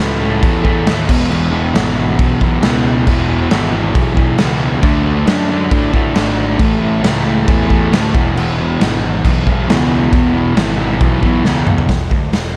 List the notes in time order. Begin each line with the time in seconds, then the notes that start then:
Already playing: A2
0.00 C#2 E3 A3
0.20 E3 A3
0.43 E2, kick, crash
0.62 E3 A3, kick
0.86 D#2 A2 E3 A3, snare, crash
1.08 E1 E2 B2 E3, kick, crash
1.30 E1 E2 B2 E3, crash
1.51 B2 E3
1.74 G#1 E2 B2 E3, snare, crash
1.96 B2 E3
2.19 B1, kick, crash
2.41 B2 E3, kick
2.62 C#2 E2 B2 E3, snare, crash
3.06 E1 E2 B2 E3, kick, crash
3.28 B2 E3
3.50 G#1 E2 B2 E3, snare, crash
3.72 B2 E3
3.95 B1, kick, crash
4.16 B2 E3, kick
4.38 C#2 E2 B2 E3, snare, crash
4.81 D2 D3 A3 D4, kick, crash
5.04 A3 D4
5.26 F#2 D3 A3 D4, snare, crash
5.49 A3 D4
5.71 A2, kick, crash
5.93 A3 D4, kick
6.14 G#1 D3 A3 D4, snare, crash
6.58 A1 A2 E3 A3, kick, crash
6.81 E3 A3
7.02 C#2 A2 E3 A3, snare, crash
7.24 E3 A3
7.48 E2, kick, crash
7.69 E3 A3, kick
7.92 D2 A2 E3 A3, snare, crash
8.14 E1 E2 B2 E3, kick
8.35 E1 E2 B2, crash
8.40 E3
8.58 B2 E3
8.79 G#1 E2 B2 E3, snare, crash
9.02 B2 E3
9.25 B1, kick, crash
9.45 B2 E3, kick
9.68 C#2 E2 B2 E3, snare, crash
10.11 E1 E2 B2 E3, kick, crash
10.33 B2 E3
10.55 G#1 E2 B2 E3, snare, crash
10.77 B2 E3
11.00 B1, kick, crash
11.22 B2 E3, kick
11.44 C#2 E2 B2 E3, snare
11.67 mid tom
11.78 floor tom
11.89 E1, kick, snare, open hi-hat
12.11 D2, kick
12.33 E1, snare, open hi-hat